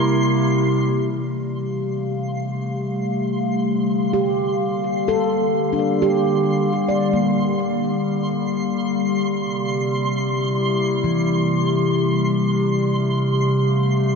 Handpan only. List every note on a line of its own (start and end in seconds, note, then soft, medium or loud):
4.13 5.26 G4 medium
5.08 6.20 A4 medium
5.73 7.32 D4 soft
6.02 10.04 G4 medium
6.88 10.90 D5 soft
7.13 11.15 A#3 soft
11.04 14.15 E3 medium